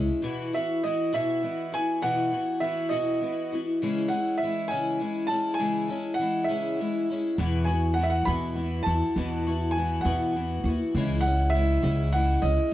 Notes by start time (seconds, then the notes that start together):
Already playing: G#3 C#4 E4
0.22 E2 B2 E3 B3 E4 F#4
0.53 E3 B3 E4 F#4 E5
0.83 E3 B3 E4 F#4 D#5
1.13 E2 B2 E3 B3 E4 F#4 E5
1.43 E3 B3 E4 F#4
1.72 E3 B3 E4 F#4 G#5
2.02 E2 B2 E3 B3 E4 F#4 F#5
2.32 E3 B3 E4 F#4
2.60 E3 B3 E4 F#4 E5
2.89 B2 E3 B3 E4 F#4 D#5
2.93 E2
3.21 E3 B3 E4 F#4
3.52 E3 B3 E4 F#4
3.82 C#3 E3 G#3 C#4 E4
4.08 C#4 E4 F#5
4.13 G#3
4.38 E5
4.42 E3 G#3 C#4 E4
4.68 G#3 C#4 E4 G#5
4.72 C#3 E3
5.00 E3 G#3 C#4 E4
5.27 C#4 E4 A5
5.33 G#3
5.54 G#5
5.59 C#3 E3 G#3 C#4 E4
5.89 G#3 C#4 E4
6.14 F#5
6.19 E3 G#3 C#4 E4
6.44 E5
6.49 C#3 E3 G#3 C#4 E4
6.79 E3 G#3 C#4 E4
7.10 G#3 C#4 E4
7.38 E2 B2 E3 B3 E4 F#4
7.64 B3 E4 F#4 G#5
7.69 E3
7.94 E3 B3 F#5
7.99 E4 F#4
8.03 E5
8.10 F#5
8.25 E2 B2 E3 B3 E4 F#4 B5
8.55 E3 B3 E4 F#4
8.83 E2 F#4 A5
8.87 E3 B3 E4
9.16 E2 B2 E3 B3 E4 F#4
9.47 E3 B3 E4 F#4
9.71 G#5
9.77 E3 B3 E4 F#4
10.01 E2 F#5
10.05 E2 B2 E3 B3 E4 F#4
10.35 E3 B3 E4 F#4
10.64 D#2 E4 F#4
10.68 E3 B3
10.95 C#2 C#3 E3 G#3 C#4 E4
11.21 F#5
11.25 G#3 C#4 E4
11.50 E3 E5
11.55 G#3 C#4 E4
11.82 C#2 C#3 E3 G#3 C#4 E4
12.12 E3 G#3 C#4 E4 F#5
12.42 C#2 G#3 C#4 E4 D#5